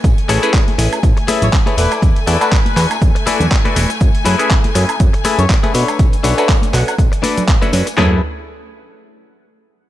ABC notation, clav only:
X:1
M:4/4
L:1/16
Q:"Swing 16ths" 1/4=121
K:F#m
V:1 name="Clav"
z2 [A,CEGB] [A,CEGB]2 z [A,CEGB]2 z2 [A,CEBg]3 [A,CEGB] [A,DEFB] z | z2 [A,DEFB] [A,DEFB]2 z [A,DEFB]2 z2 [A,DEFB]3 [A,DEFB] [A,DEFB] z | z2 [A,CEGB] [A,CEGB]2 z [A,CEGB]2 z2 [A,CEBg]3 [A,CEGB] [A,CDFB] z | z2 [A,CDFB] [A,CDFB]2 z [A,CDFB]2 z2 [A,DFB]3 [A,CDFB] [A,CDFB] z |
[A,CEGB]2 z12 z2 |]